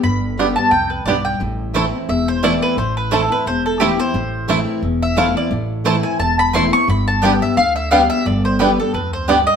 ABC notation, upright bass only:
X:1
M:4/4
L:1/8
Q:"Swing" 1/4=175
K:Am
V:1 name="Upright bass" clef=bass
G,,,4 C,,2 B,,,2 | A,,,4 E,,,4 | A,,,4 E,,,4 | A,,,4 E,,,4 |
A,,,4 E,,,4 | G,,,4 D,,4 | G,,,4 D,,4 |]